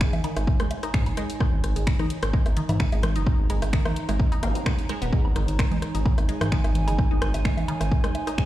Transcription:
Already playing: D#4 C#5 G#5
0.01 G#3, finger snap, kick, cross-stick
0.13 closed hi-hat, low conga, low woodblock
0.24 D#3, closed hi-hat, high woodblock
0.36 G#1, cross-stick, closed hi-hat, low woodblock
0.47 kick
0.60 G#3, cross-stick, closed hi-hat
0.71 closed hi-hat, low woodblock
0.83 D#4, cross-stick, closed hi-hat
0.94 G#2, finger snap, kick
1.06 G#1, closed hi-hat, high woodblock
1.17 G#3, cross-stick, closed hi-hat
1.30 closed hi-hat
1.40 D#3, kick, cross-stick
1.53 G#1
1.63 G#1, cross-stick, closed hi-hat
1.76 G#1 G#3, closed hi-hat
1.87 finger snap, kick, high woodblock
1.99 D#4, cross-stick, closed hi-hat, low conga
2.08 A#5, closed hi-hat
2.23 G#1, cross-stick, closed hi-hat
2.33 G#3, kick
2.46 G#1, cross-stick, closed hi-hat, low woodblock
2.57 D#3, closed hi-hat
2.69 G#2, closed hi-hat, low conga, high woodblock, low woodblock
2.80 finger snap, kick, cross-stick
2.92 G#1 G#3, closed hi-hat, low woodblock
3.03 cross-stick, closed hi-hat, low conga
3.16 F#1 D#4, closed hi-hat
3.27 kick, cross-stick
3.39 G#1
3.50 G#1 G#3, closed hi-hat, high woodblock
3.62 G#1, cross-stick, closed hi-hat, low woodblock
3.73 D#3, finger snap, kick
3.85 cross-stick, closed hi-hat, low conga, low woodblock
3.96 closed hi-hat
4.09 G#1 G#3, cross-stick, closed hi-hat, low woodblock
4.20 kick
4.32 D#4, closed hi-hat, high woodblock
4.43 G#1 A#3, cross-stick, closed hi-hat, zap, low woodblock
4.55 closed hi-hat
4.66 G#3, finger snap, kick, cross-stick
4.79 closed hi-hat
4.89 G#3, cross-stick, closed hi-hat
5.02 D#1 B3, closed hi-hat
5.13 G#3, kick
5.25 G#1, high woodblock
5.36 G#1 D#3, cross-stick, closed hi-hat
5.48 G#1, closed hi-hat
5.59 finger snap, kick, cross-stick
5.71 G#3, closed hi-hat, low conga
5.81 G#5, cross-stick, closed hi-hat
5.95 G#1 D#4, closed hi-hat
6.06 kick, high woodblock
6.18 G#1, cross-stick, closed hi-hat, low woodblock
6.29 G#3, closed hi-hat
6.41 G#2, cross-stick, closed hi-hat, low conga, low woodblock
6.52 D#3, finger snap, kick
6.64 G#1, cross-stick, closed hi-hat, low woodblock
6.75 closed hi-hat, low conga
6.88 F#1 G#3, closed hi-hat, high woodblock
6.99 kick, cross-stick
7.11 G#1 D#4
7.22 G#1, cross-stick, closed hi-hat
7.34 G#1, closed hi-hat, low woodblock
7.45 G#3, finger snap, kick, cross-stick
7.57 closed hi-hat, low conga, low woodblock
7.68 D#3, closed hi-hat, high woodblock
7.81 G#1, cross-stick, closed hi-hat, low woodblock
7.92 kick
8.04 G#3, cross-stick, closed hi-hat
8.15 closed hi-hat, low woodblock
8.27 D#4, cross-stick, closed hi-hat
8.38 G#2, finger snap, kick

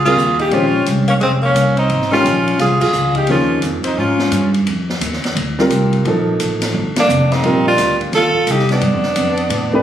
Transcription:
Already playing: C#2
0.05 G3 C4 F4 G#4 A#4, kick, crash
0.17 D#2, hi-hat pedal
0.39 D#4 G4, kick, ride
0.51 A#1 G#3 C#4 F4 G4 C5, ride
0.86 C2, hi-hat pedal, ride
1.08 A#3 C#4, ride
1.20 F1 G#3 C4, ride
1.42 A#3 C#4
1.55 C2, hi-hat pedal, ride
1.76 C4 D#4, ride
1.90 G#1, ride
2.02 snare
2.11 D#3 G#3 C#4 F4 G4, snare
2.25 A#1, hi-hat pedal, ride
2.48 ride
2.59 C2 F4 G#4, snare, ride
2.80 F4 G#4, kick, crash
2.93 C#2, hi-hat pedal
3.15 D#4 G4, kick, ride
3.27 D#2 F3 A#3 C#4 D#4 G#4, ride
3.31 F4
3.62 F2, hi-hat pedal, ride
3.83 C4 D#4, muted upright bass stroke, ride
3.97 G#2 C#4 F4
4.19 snare
4.31 G2, hi-hat pedal, ride
4.54 ride
4.67 F2, ride
4.90 snare
5.01 D#2, hi-hat pedal, ride
5.13 snare
5.23 muted upright bass stroke, snare, ride
5.35 D2, ride
5.59 G3 C4 F4 A#4, snare
5.70 C2, hi-hat pedal, ride
5.93 ride
6.05 A#1 F3 A#3 D#4 A4, ride
6.40 A1, hi-hat pedal, ride
6.62 snare, ride
6.74 G1
6.96 A#3 D4, snare, ride
7.09 F1, hi-hat pedal
7.32 C4 D#4, snare, ride
7.43 A#1 G3 C4 F4 A#4, ride
7.68 D4 F4
7.78 D2, snare, hi-hat pedal, ride
8.01 kick, ride
8.12 D#2 F4 A4, snare, ride
8.34 muted upright bass stroke, kick
8.47 C2, hi-hat pedal, ride
8.51 D#4 G4
8.59 snare
8.69 B3 D4, snare, ride
8.81 G2, ride
8.93 F2
9.03 D2, snare
9.16 F2, hi-hat pedal, ride
9.37 ride
9.50 A2, ride
9.72 A3 D4 G4 B4, kick

